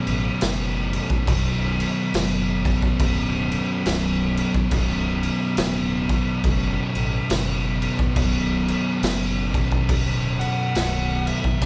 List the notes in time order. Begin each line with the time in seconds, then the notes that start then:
Already playing: B1 F#2 B2 D3 E3 B3
0.07 A1, crash
0.41 F#1, snare, crash
0.93 crash
1.10 kick
1.27 B0 B1 F#2 B2, kick, crash
1.80 crash
2.13 F#1, snare, crash
2.64 B1 F#2 B2, kick, crash
2.82 kick
3.00 D1, kick, crash
3.52 crash
3.86 B0, snare, crash
4.37 crash
4.54 kick
4.71 B0 B1 F#2 B2, kick, crash
5.23 crash
5.57 D1, snare, crash
6.09 B1 F#2 B2, kick, crash
6.44 F#1, kick, crash
6.95 A1, crash
7.30 F#1, snare, crash
7.82 crash
7.99 kick
8.16 B0 B1 F#2 B2, kick, crash
8.68 crash
9.02 F#1, snare, crash
9.54 B1 F#2 B2, kick, crash
9.72 kick
9.89 D1, kick, crash
10.40 F#5, crash
10.75 B0, snare, crash
11.27 E5, crash
11.44 kick
11.61 B0 B1 F#2 D3 F#3 B3, kick, crash